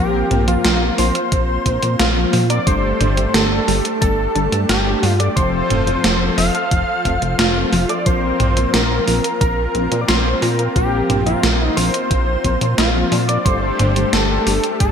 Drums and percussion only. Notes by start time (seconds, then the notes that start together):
0.31 closed hi-hat, mid tom
0.48 closed hi-hat
0.65 snare, closed hi-hat
0.98 open hi-hat
1.15 closed hi-hat
1.32 kick, closed hi-hat
1.66 kick, closed hi-hat
1.83 closed hi-hat
1.99 snare, closed hi-hat
2.33 open hi-hat
2.50 closed hi-hat
2.67 kick, closed hi-hat
3.01 closed hi-hat, mid tom
3.17 closed hi-hat
3.34 snare, closed hi-hat
3.68 open hi-hat
3.85 closed hi-hat
4.02 kick, closed hi-hat
4.36 closed hi-hat
4.52 closed hi-hat
4.69 snare, closed hi-hat
5.03 open hi-hat
5.20 closed hi-hat
5.37 kick, closed hi-hat
5.70 closed hi-hat, mid tom
5.87 closed hi-hat
6.04 snare, closed hi-hat
6.38 open hi-hat
6.55 closed hi-hat
6.71 kick, closed hi-hat
7.05 kick, closed hi-hat
7.22 closed hi-hat
7.39 snare, closed hi-hat
7.73 open hi-hat
7.89 closed hi-hat
8.06 kick, closed hi-hat
8.40 closed hi-hat, mid tom
8.57 closed hi-hat
8.74 snare, closed hi-hat
9.08 open hi-hat
9.24 closed hi-hat
9.41 kick, closed hi-hat
9.75 closed hi-hat
9.92 closed hi-hat
10.09 snare, closed hi-hat
10.42 open hi-hat
10.59 closed hi-hat
10.76 kick, closed hi-hat
11.10 closed hi-hat, mid tom
11.27 closed hi-hat
11.43 snare, closed hi-hat
11.77 open hi-hat
11.94 closed hi-hat
12.11 kick, closed hi-hat
12.44 kick, closed hi-hat
12.61 closed hi-hat
12.78 snare, closed hi-hat
13.12 open hi-hat
13.29 closed hi-hat
13.46 kick, closed hi-hat
13.79 closed hi-hat, mid tom
13.96 closed hi-hat
14.13 snare, closed hi-hat
14.47 open hi-hat
14.64 closed hi-hat
14.80 kick, closed hi-hat